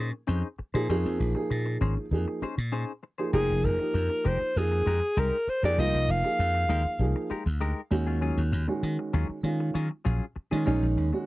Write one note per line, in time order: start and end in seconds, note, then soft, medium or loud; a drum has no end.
0.00 0.11 A#2 medium
0.00 0.13 C#4 medium
0.00 0.12 D#4 medium
0.00 0.12 G#4 medium
0.00 0.11 C5 medium
0.12 muted clean electric guitar stroke soft
0.27 0.42 F2 medium
0.27 0.46 C#4 loud
0.27 0.47 D#4 loud
0.27 0.47 G#4 medium
0.27 0.47 C5 medium
0.58 muted clean electric guitar stroke soft
0.58 muted slap bass stroke soft
0.74 0.87 A#2 medium
0.74 0.88 F3 medium
0.74 0.88 A#3 medium
0.74 0.88 D#4 medium
0.74 0.88 D#4 soft
0.74 0.88 G#4 medium
0.74 0.89 C5 medium
0.89 1.03 F2 loud
0.89 1.31 F3 loud
0.89 1.31 A#3 loud
0.89 1.08 C#4 medium
0.89 1.08 D#4 medium
0.89 1.32 D#4 loud
0.89 1.08 G#4 medium
0.89 1.32 G#4 loud
0.89 1.08 C5 medium
1.05 1.18 F2 medium
1.19 1.33 A#1 medium
1.19 muted clean electric guitar stroke soft
1.35 2.04 F3 medium
1.35 2.04 A#3 medium
1.35 2.04 D#4 medium
1.35 2.05 G#4 medium
1.35 muted clean electric guitar stroke soft
1.50 1.77 A#2 medium
1.50 muted clean electric guitar stroke soft
1.66 muted clean electric guitar stroke soft
1.81 1.94 G#1 medium
1.81 1.97 C#4 medium
1.81 1.96 D#4 medium
1.81 1.96 G#4 medium
1.81 1.96 C5 medium
1.97 muted slap bass stroke soft
1.97 muted clean electric guitar stroke soft
2.11 2.25 F2 medium
2.11 2.39 F3 medium
2.11 2.39 A#3 medium
2.11 2.40 D#4 medium
2.11 2.40 G#4 medium
2.28 muted clean electric guitar stroke soft
2.42 2.58 C#4 medium
2.42 2.50 D#4 soft
2.42 2.57 D#4 medium
2.42 2.50 G#4 soft
2.42 2.57 G#4 medium
2.42 2.56 C5 medium
2.42 muted slap bass stroke soft
2.58 2.84 A#2 medium
2.72 2.91 C#4 medium
2.72 2.91 D#4 medium
2.72 2.91 G#4 medium
2.72 2.91 C5 loud
3.03 muted clean electric guitar stroke soft
3.18 3.32 F3 medium
3.18 3.32 A#3 medium
3.18 3.32 D#4 soft
3.18 3.33 D#4 medium
3.18 3.33 G#4 soft
3.18 3.33 G#4 medium
3.18 3.33 C5 soft
3.33 3.47 F1 loud
3.33 3.75 F3 loud
3.33 3.52 G#3 medium
3.33 3.75 A#3 medium
3.33 3.52 D#4 medium
3.33 3.76 D#4 medium
3.33 3.52 G4 medium
3.33 3.76 G#4 loud
3.33 3.67 G#4 medium
3.33 3.52 A#4 medium
3.49 3.62 F1 medium
3.64 3.77 F1 medium
3.64 4.29 A#4 medium
3.64 muted clean electric guitar stroke soft
3.79 4.49 F3 medium
3.79 4.49 A#3 medium
3.79 4.49 D#4 medium
3.79 4.49 G4 medium
3.79 muted clean electric guitar stroke soft
3.94 4.08 F2 loud
3.94 muted clean electric guitar stroke soft
4.10 muted clean electric guitar stroke soft
4.25 4.39 F1 medium
4.25 4.41 G#3 medium
4.25 4.41 D#4 medium
4.25 4.40 G4 medium
4.25 4.40 A#4 medium
4.25 4.59 C5 medium
4.41 muted clean electric guitar stroke soft
4.41 muted slap bass stroke soft
4.56 4.82 F2 medium
4.56 4.84 F3 medium
4.56 4.84 A#3 medium
4.56 4.84 D#4 medium
4.56 4.84 G#4 medium
4.56 5.21 G#4 medium
4.72 muted clean electric guitar stroke soft
4.86 5.00 F2 medium
4.86 5.02 G#3 medium
4.86 5.02 D#4 medium
4.86 4.94 D#4 soft
4.86 5.01 G4 medium
4.86 4.95 G#4 soft
4.86 5.01 A#4 medium
5.02 muted clean electric guitar stroke soft
5.17 5.30 C2 loud
5.17 5.36 G#3 medium
5.17 5.36 D#4 medium
5.17 5.36 G4 medium
5.17 5.36 A#4 medium
5.17 5.51 A#4 medium
5.47 5.64 C5 medium
5.47 muted slap bass stroke soft
5.47 muted clean electric guitar stroke soft
5.62 5.76 F2 medium
5.62 5.76 F3 medium
5.62 5.77 A#3 medium
5.62 5.77 D#4 medium
5.62 5.77 D#4 soft
5.62 5.78 G4 medium
5.62 5.77 G#4 medium
5.62 5.78 A#4 medium
5.62 5.81 D5 loud
5.77 5.91 C2 medium
5.77 6.19 F3 loud
5.77 5.97 G#3 medium
5.77 6.20 A#3 medium
5.77 5.97 D#4 medium
5.77 6.20 D#4 medium
5.77 6.20 F4 loud
5.77 5.97 G4 medium
5.77 5.97 A#4 medium
5.77 6.12 D#5 loud
5.94 6.06 C2 medium
6.08 6.22 F1 medium
6.08 7.32 F5 loud
6.08 muted clean electric guitar stroke soft
6.24 6.93 F3 medium
6.24 6.93 A#3 medium
6.24 6.93 D#4 medium
6.24 6.94 G#4 medium
6.24 muted clean electric guitar stroke soft
6.39 6.65 F2 medium
6.39 muted clean electric guitar stroke soft
6.54 muted clean electric guitar stroke soft
6.69 6.83 D#2 medium
6.69 6.85 G#3 medium
6.69 6.84 D#4 medium
6.69 6.84 G4 medium
6.69 6.84 A#4 medium
6.85 muted clean electric guitar stroke soft
6.85 muted slap bass stroke soft
6.99 7.13 C2 loud
6.99 7.27 F3 medium
6.99 7.28 A#3 medium
6.99 7.28 D#4 medium
6.99 7.28 G#4 medium
7.16 muted clean electric guitar stroke medium
7.30 7.46 G#3 medium
7.30 7.38 D#4 soft
7.30 7.45 D#4 medium
7.30 7.45 G4 medium
7.30 7.39 G#4 soft
7.30 7.45 A#4 medium
7.30 muted slap bass stroke soft
7.46 7.72 D2 medium
7.46 muted clean electric guitar stroke medium
7.61 7.80 G#3 medium
7.61 7.80 D#4 medium
7.61 7.80 G4 medium
7.61 7.80 A#4 loud
7.91 8.31 D#2 medium
7.91 8.60 D#3 medium
7.91 8.61 G#3 medium
7.91 8.61 C#4 medium
7.91 8.61 F#4 loud
7.91 muted clean electric guitar stroke soft
8.06 8.21 C#4 medium
8.06 8.21 F4 medium
8.06 8.21 G#4 medium
8.21 8.41 F#3 medium
8.21 8.41 C#4 medium
8.21 8.41 F4 loud
8.21 8.41 G#4 loud
8.37 8.50 D#2 medium
8.52 8.66 D#2 medium
8.52 muted clean electric guitar stroke soft
8.67 9.37 D#3 medium
8.67 9.37 G#3 medium
8.67 9.37 C#4 medium
8.67 9.38 F#4 medium
8.67 muted clean electric guitar stroke soft
8.83 8.96 D#3 loud
8.83 muted clean electric guitar stroke medium
8.99 muted clean electric guitar stroke soft
9.13 9.27 D#2 medium
9.13 9.29 F#3 medium
9.13 9.29 C#4 medium
9.13 9.29 F4 medium
9.13 9.28 G#4 loud
9.29 muted slap bass stroke soft
9.29 muted clean electric guitar stroke soft
9.43 9.72 D#3 medium
9.43 9.70 D#3 loud
9.43 9.72 G#3 medium
9.43 9.72 C#4 medium
9.43 9.72 F4 medium
9.60 muted clean electric guitar stroke medium
9.74 9.88 D#3 medium
9.74 9.90 F#3 medium
9.74 9.82 C#4 soft
9.74 9.90 C#4 medium
9.74 9.83 D#4 soft
9.74 9.90 F4 medium
9.74 9.90 G#4 medium
9.91 muted clean electric guitar stroke soft
10.05 10.19 A#1 medium
10.05 10.24 F#3 medium
10.05 10.24 C#4 medium
10.05 10.24 F4 loud
10.05 10.24 G#4 loud
10.36 muted clean electric guitar stroke soft
10.36 muted slap bass stroke soft
10.51 10.64 D#3 medium
10.51 10.65 D#3 loud
10.51 10.64 G#3 medium
10.51 10.65 C#4 medium
10.51 10.65 D#4 medium
10.51 10.66 F4 medium
10.51 10.66 G#4 medium
10.66 10.80 A#1 medium
10.66 11.08 D#3 loud
10.66 10.85 F#3 medium
10.66 11.08 G#3 loud
10.66 10.85 C#4 medium
10.66 11.09 C#4 loud
10.66 11.09 D#4 loud
10.66 10.86 F4 medium
10.66 10.86 G#4 medium
10.83 10.95 A#1 medium
10.97 11.11 D#2 medium
10.97 muted clean electric guitar stroke soft
11.12 11.26 D#3 medium
11.12 11.26 G#3 medium
11.12 11.26 C#4 medium
11.12 11.26 F#4 medium
11.12 muted clean electric guitar stroke soft